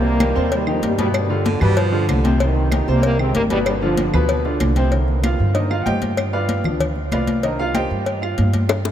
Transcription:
Already playing: upright bass C2, grand piano C3 C4 C5, trombone section G3 A#3
0.04 high conga
0.19 grand piano D#3 D#4 G4, cowbell, high conga, claves
0.35 upright bass D#2, grand piano C3 C4 C5, high conga
0.52 trombone section D#3 G3, cowbell, high conga
0.67 trombone section D3 F3, grand piano D#3 D#4 G4, high conga, claves
0.82 upright bass G2, trombone section D#3 G3, cowbell, high conga
0.98 grand piano B2 B3 B4, trombone section D#3 G3, cowbell, high conga
1.14 trombone section D3 G3, cowbell, high conga, claves
1.30 grand piano D3 D4 F4, high conga
1.45 baritone saxophone D3, cowbell, high conga
1.61 upright bass G2, grand piano B2 B3 B4, baritone saxophone G3, high conga, low conga, claves
1.77 baritone saxophone F3, cowbell, high conga
1.92 grand piano D3 D4 F4, high conga
2.08 upright bass C2, baritone saxophone D3, cowbell, high conga, claves
2.24 grand piano C3 C4 C5, cowbell, high conga
2.39 grand piano C3 C4 C5, trombone section C3 D#3, cowbell, high conga
2.56 high conga
2.72 grand piano D#3 D#4 G4, cowbell, high conga, claves
2.87 upright bass C2, grand piano C3 C4 C5, trombone section G3 A#3, high conga
3.03 trombone section G3 A#3, cowbell, high conga
3.19 grand piano D#3 D#4 G4, trombone section G#3 C4, high conga, claves
3.34 upright bass G1, trombone section G3 A#3, cowbell, high conga
3.50 grand piano B2 B3 B4, trombone section D#3 G3, cowbell, high conga
3.66 trombone section D3 G3, cowbell, high conga, claves
3.82 grand piano D3 D4 F4, trombone section D3 F3, high conga
3.97 cowbell, high conga
4.13 upright bass D2, grand piano B2 B3 B4, high conga, low conga, claves
4.29 cowbell, high conga
4.45 grand piano D3 D4 F4, high conga
4.60 upright bass C2, cowbell, high conga, claves
4.76 grand piano C3 C4 C5, cowbell, high conga
4.92 grand piano D3 D#3 A#3, cowbell, high conga
5.08 high conga
5.23 grand piano F4 F5, cowbell, high conga, claves
5.39 upright bass G2, high conga
5.54 grand piano D#3 A#3 D4 D#4 A#4 C5 D#5, cowbell, high conga
5.70 grand piano F4 F5, high conga, claves
5.82 grand piano F#5
5.86 upright bass G2, grand piano G4 C5 D#5 G5, cowbell, high conga
6.02 cowbell, high conga
6.17 cowbell, high conga, claves
6.33 grand piano F4 B4 D5 F5, high conga
6.49 cowbell, high conga
6.64 upright bass D2, grand piano F3 B3 D4, high conga, low conga, claves
6.80 cowbell, high conga, low conga
6.96 high conga
7.12 upright bass C2, grand piano F4 B4 D5 F5, cowbell, high conga, claves
7.27 cowbell, high conga
7.43 grand piano D#3 A#3 D4 D#4 A#4 C5 D#5, cowbell, high conga
7.59 grand piano F4 F5, high conga
7.75 grand piano G4 C5 D#5 G5, cowbell, high conga, claves
7.91 upright bass G2, high conga
8.06 cowbell, high conga
8.22 grand piano F4 F5, high conga, claves
8.38 upright bass G2, cowbell, high conga
8.53 cowbell, high conga
8.69 cowbell, high bongo, claves
8.85 high bongo, high conga

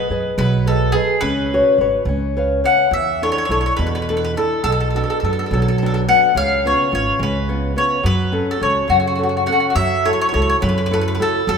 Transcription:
Already playing: mandolin B4, nylon-string guitar D#5
0.10 upright bass F#2, nylon-string guitar G#4 B4 D#5
0.38 upright bass B1, nylon-string guitar F#3, mandolin B4
0.66 nylon-string guitar G#4 B4 D#5, mandolin A4
0.92 mandolin G#4, nylon-string guitar G#4 B4 D#5
1.21 upright bass C#2, nylon-string guitar C#4, mandolin B4
1.54 nylon-string guitar F#4 B4 C#5
1.78 upright bass G#1, nylon-string guitar F#4 B4 C#5
2.05 upright bass C#2, nylon-string guitar C#4
2.37 nylon-string guitar B4 C#5 F5
2.64 nylon-string guitar B4 C#5 F5, mandolin F#5
2.91 upright bass E2, nylon-string guitar E3, mandolin E5
3.22 nylon-string guitar D4 E4 A4, mandolin C#5
3.32 mandolin C#5
3.38 mandolin C#5
3.45 upright bass B1, mandolin C#5
3.50 nylon-string guitar D4 E4 A4, mandolin C#5
3.61 mandolin C#5
3.66 mandolin C#5
3.76 upright bass E2, nylon-string guitar B2, mandolin B4
3.87 mandolin B4
3.95 mandolin B4
4.02 mandolin B4
4.09 nylon-string guitar D4 E4 A4, mandolin B4
4.17 mandolin B4
4.25 mandolin B4
4.36 nylon-string guitar D4 E4 A4, mandolin A4
4.64 upright bass B1, nylon-string guitar B2, mandolin A4
4.72 mandolin A4
4.80 mandolin A4
4.90 nylon-string guitar B3, mandolin A4
4.95 nylon-string guitar D4 F#4, mandolin A4
5.04 mandolin A4
5.10 mandolin A4
5.20 upright bass F#2, mandolin A4
5.24 nylon-string guitar B3 D4 F#4, mandolin A4
5.33 mandolin A4
5.39 mandolin A4
5.46 mandolin A4
5.51 upright bass B1, nylon-string guitar F#3, mandolin A4
5.62 mandolin A4
5.68 mandolin A4
5.78 nylon-string guitar B3, mandolin A4
5.83 nylon-string guitar D4 F#4, mandolin A4
5.94 mandolin A4
6.08 nylon-string guitar B3 D4 F#4, mandolin F#5
6.35 upright bass C#2, nylon-string guitar C#3, mandolin F5
6.66 nylon-string guitar B3 C#4 F4, mandolin C#5
6.91 upright bass G#1, nylon-string guitar B3 C#4 F4, mandolin C#5
7.19 upright bass C#2, nylon-string guitar G#3
7.23 mandolin B4
7.49 nylon-string guitar B3 C#4 F4
7.76 nylon-string guitar B3 C#4 F4, mandolin C#5
8.03 upright bass F#2, nylon-string guitar F#3, mandolin B4
8.32 nylon-string guitar C#4 F#4 A4
8.51 mandolin A4
8.60 upright bass C#2, nylon-string guitar C#4 F#4 A4, mandolin C#5
8.88 upright bass F#2, nylon-string guitar C#3, mandolin F#4
9.00 mandolin F#4
9.07 mandolin F#4
9.15 nylon-string guitar C#4 F#4 A4, mandolin F#4
9.23 mandolin F#4
9.29 mandolin F#4
9.37 mandolin F#4
9.46 nylon-string guitar C#4 F#4 A4, mandolin F#4 F#5
9.52 mandolin F#4
9.60 mandolin F#4
9.70 mandolin F#4
9.75 upright bass F#2, nylon-string guitar F#3, mandolin E5
10.05 nylon-string guitar E4 F#4 A4, mandolin C#5
10.13 mandolin C#5
10.21 mandolin C#5
10.29 nylon-string guitar E4, mandolin C#5
10.33 upright bass C#2, nylon-string guitar F#4 A4, mandolin C#5
10.42 mandolin C#5
10.50 mandolin C#5
10.61 upright bass F#2, nylon-string guitar C#3, mandolin B4
10.69 mandolin B4
10.78 mandolin B4
10.86 mandolin B4
10.91 nylon-string guitar E4 F#4 A4, mandolin B4
11.01 mandolin B4
11.08 mandolin B4
11.15 mandolin B4
11.20 nylon-string guitar E4 F#4 A4, mandolin A4
11.47 upright bass F#2, nylon-string guitar F#3, mandolin A4

